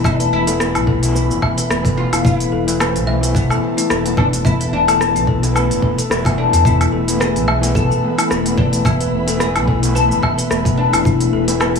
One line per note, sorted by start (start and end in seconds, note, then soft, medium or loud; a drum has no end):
0.00 0.26 E1 loud
0.00 0.43 E3 medium
0.00 0.43 A3 medium
0.00 11.80 A3 medium
0.00 0.44 B3 medium
0.00 0.45 E4 medium
0.00 11.80 B4 medium
0.00 11.80 E5 medium
0.00 2.23 B5 medium
0.04 0.32 D4 loud
0.04 0.19 E5 medium
0.04 kick loud
0.04 low woodblock medium
0.04 shaker medium
0.20 0.31 B4 medium
0.20 open hi-hat soft
0.20 shaker soft
0.32 0.76 E1 loud
0.32 1.97 E4 loud
0.47 0.98 E3 medium
0.47 0.99 A3 medium
0.47 0.99 B3 medium
0.47 0.99 E4 medium
0.47 0.54 A4 medium
0.47 open hi-hat medium
0.47 shaker medium
0.60 cross-stick loud
0.60 shaker medium
0.75 1.31 B1 medium
0.75 0.86 E4 medium
0.75 open hi-hat soft
0.75 low woodblock medium
0.75 shaker soft
0.87 1.14 A4 medium
0.87 kick medium
1.00 1.80 E3 medium
1.00 1.81 A3 medium
1.00 1.82 B3 medium
1.00 open hi-hat medium
1.00 shaker medium
1.05 1.82 E4 loud
1.15 1.29 B4 medium
1.15 shaker medium
1.30 1.38 E1 medium
1.30 shaker soft
1.42 1.57 E5 loud
1.42 kick medium
1.42 low woodblock medium
1.57 1.69 B4 loud
1.57 open hi-hat medium
1.57 shaker medium
1.70 2.04 E1 medium
1.70 cross-stick loud
1.70 shaker medium
1.83 2.63 E3 medium
1.83 2.64 A3 medium
1.83 2.64 B3 medium
1.83 2.11 A4 medium
1.83 kick loud
1.83 open hi-hat soft
1.83 shaker soft
1.87 2.65 E4 medium
1.97 2.24 F4 medium
2.12 2.46 E1 medium
2.12 2.23 E4 loud
2.12 open hi-hat medium
2.12 low woodblock medium
2.12 shaker medium
2.24 2.39 E4 loud
2.24 2.36 F4 loud
2.24 6.64 A5 loud
2.24 kick loud
2.24 shaker medium
2.36 2.81 E4 loud
2.40 open hi-hat soft
2.40 shaker soft
2.52 2.96 E1 loud
2.52 2.67 A4 medium
2.67 3.19 E3 medium
2.67 3.19 A3 medium
2.67 3.20 E4 medium
2.67 3.19 B4 medium
2.67 open hi-hat medium
2.67 shaker medium
2.80 3.31 C4 loud
2.80 3.06 B4 medium
2.80 cross-stick loud
2.80 low woodblock medium
2.80 shaker medium
2.95 3.51 B1 medium
2.95 open hi-hat soft
2.95 shaker soft
3.07 3.21 E5 loud
3.21 4.01 E3 loud
3.21 4.01 A3 medium
3.21 4.02 B3 medium
3.21 4.03 E4 loud
3.21 3.49 B4 medium
3.21 open hi-hat medium
3.21 shaker medium
3.35 4.20 B3 loud
3.35 kick loud
3.35 shaker medium
3.50 3.58 E1 medium
3.50 3.62 A4 medium
3.50 low woodblock medium
3.50 shaker soft
3.77 3.84 E4 medium
3.77 open hi-hat medium
3.77 shaker medium
3.90 4.25 E1 medium
3.90 4.16 A4 medium
3.90 cross-stick loud
3.90 shaker medium
4.04 4.83 E3 medium
4.04 4.84 A3 medium
4.04 4.85 B3 medium
4.04 open hi-hat soft
4.04 shaker soft
4.08 4.85 E4 medium
4.17 4.26 D4 medium
4.17 4.44 B4 loud
4.17 kick loud
4.17 low woodblock medium
4.33 4.66 E1 medium
4.33 open hi-hat medium
4.33 shaker medium
4.45 4.73 E4 loud
4.45 4.59 E5 medium
4.45 kick loud
4.45 shaker medium
4.60 4.72 B4 medium
4.60 open hi-hat soft
4.60 shaker soft
4.72 5.17 E1 loud
4.72 6.37 D4 loud
4.87 5.39 E3 medium
4.87 5.39 A3 medium
4.87 5.39 B3 medium
4.87 5.40 E4 loud
4.87 4.95 A4 medium
4.87 open hi-hat medium
4.87 low woodblock medium
4.87 shaker medium
5.01 cross-stick loud
5.01 shaker medium
5.15 5.71 B1 medium
5.15 5.27 E4 medium
5.15 open hi-hat soft
5.15 shaker soft
5.27 5.54 A4 medium
5.27 kick medium
5.42 5.80 E3 medium
5.42 5.80 A3 medium
5.42 5.81 B3 medium
5.42 5.81 E4 loud
5.42 open hi-hat medium
5.42 shaker medium
5.55 5.70 B4 medium
5.55 low woodblock medium
5.55 shaker medium
5.70 5.78 E1 medium
5.70 open hi-hat soft
5.70 shaker soft
5.82 5.96 E3 medium
5.82 5.97 A3 medium
5.82 5.97 B3 medium
5.82 5.97 E4 medium
5.82 5.97 B4 medium
5.82 kick medium
5.98 6.10 A4 medium
5.98 open hi-hat medium
5.98 shaker medium
6.10 6.45 E1 medium
6.10 6.23 E3 loud
6.10 6.23 A3 medium
6.10 6.23 B3 medium
6.10 6.24 E4 loud
6.10 cross-stick medium
6.10 shaker medium
6.24 7.04 E3 medium
6.24 7.04 A3 medium
6.24 7.05 B3 medium
6.24 6.37 E5 medium
6.24 kick loud
6.24 open hi-hat soft
6.24 low woodblock medium
6.24 shaker soft
6.28 7.06 E4 medium
6.38 6.65 D4 medium
6.38 6.52 A4 medium
6.53 6.86 E2 medium
6.53 6.64 E4 medium
6.53 open hi-hat medium
6.53 shaker medium
6.65 7.20 E4 loud
6.65 6.80 E4 medium
6.65 11.04 B5 medium
6.65 kick loud
6.65 shaker medium
6.81 open hi-hat soft
6.81 low woodblock medium
6.81 shaker soft
6.92 7.37 E1 loud
6.92 7.07 A4 medium
7.08 7.59 E3 medium
7.08 7.59 A3 medium
7.08 7.60 B3 medium
7.08 7.60 E4 medium
7.08 open hi-hat medium
7.08 shaker medium
7.20 7.75 G#4 medium
7.20 7.47 B4 medium
7.20 cross-stick medium
7.20 shaker medium
7.35 7.91 B1 medium
7.35 open hi-hat soft
7.35 shaker soft
7.48 7.61 E5 medium
7.48 low woodblock medium
7.61 8.41 E3 medium
7.61 8.42 A3 medium
7.61 8.42 B3 medium
7.61 7.89 B4 medium
7.61 open hi-hat medium
7.61 shaker medium
7.66 8.43 E4 medium
7.75 8.60 A4 loud
7.75 kick loud
7.75 shaker medium
7.90 7.99 E1 medium
7.90 8.02 A4 medium
7.90 shaker soft
8.18 8.25 E4 medium
8.18 open hi-hat medium
8.18 low woodblock medium
8.18 shaker medium
8.30 8.65 E1 medium
8.30 8.57 A4 medium
8.30 cross-stick medium
8.30 shaker medium
8.44 9.23 E3 medium
8.44 9.24 A3 medium
8.44 9.25 B3 medium
8.44 open hi-hat soft
8.44 shaker soft
8.48 9.25 E4 medium
8.58 8.85 D4 medium
8.58 8.84 B4 loud
8.58 kick loud
8.73 9.06 E1 medium
8.73 open hi-hat medium
8.73 shaker medium
8.85 9.42 E4 loud
8.85 9.00 E5 medium
8.85 kick loud
8.85 low woodblock medium
8.85 shaker medium
9.01 9.12 B4 medium
9.01 open hi-hat soft
9.01 shaker soft
9.12 9.57 E1 loud
9.27 9.79 E3 medium
9.27 9.79 A3 medium
9.27 9.79 B3 medium
9.27 9.80 E4 loud
9.27 9.35 A4 medium
9.27 open hi-hat medium
9.27 shaker medium
9.40 9.95 G#4 medium
9.40 cross-stick medium
9.40 shaker medium
9.55 10.12 B1 medium
9.55 9.67 E4 medium
9.55 open hi-hat soft
9.55 low woodblock medium
9.55 shaker soft
9.68 9.94 A4 medium
9.68 kick medium
9.81 10.61 E3 medium
9.81 10.62 A3 medium
9.81 10.62 B3 medium
9.81 10.63 E4 loud
9.81 open hi-hat medium
9.81 shaker medium
9.95 10.80 A4 loud
9.95 10.10 B4 medium
9.95 shaker medium
10.10 10.19 E1 medium
10.10 shaker soft
10.23 10.37 E5 loud
10.23 kick medium
10.23 low woodblock medium
10.38 10.50 B4 loud
10.38 open hi-hat medium
10.38 shaker medium
10.50 10.85 E1 medium
10.50 cross-stick medium
10.50 shaker medium
10.64 11.44 E3 medium
10.64 11.44 A3 medium
10.64 11.45 B3 medium
10.64 11.45 E4 medium
10.64 10.92 A4 medium
10.64 kick loud
10.64 open hi-hat soft
10.64 shaker soft
10.77 11.29 D4 medium
10.93 11.26 E1 medium
10.93 11.04 E4 loud
10.93 open hi-hat medium
10.93 low woodblock medium
10.93 shaker medium
11.05 11.20 E4 loud
11.05 11.80 G#5 loud
11.05 kick loud
11.05 shaker medium
11.20 open hi-hat soft
11.20 shaker soft
11.33 11.77 E1 loud
11.33 11.47 A4 medium
11.48 11.80 E3 medium
11.48 11.80 A3 medium
11.48 11.80 B3 medium
11.48 11.80 E4 loud
11.48 open hi-hat medium
11.48 shaker medium
11.60 11.80 E4 medium
11.60 11.80 B4 medium
11.60 cross-stick medium
11.60 low woodblock medium
11.60 shaker soft
11.75 11.80 B1 medium
11.75 open hi-hat soft
11.75 shaker soft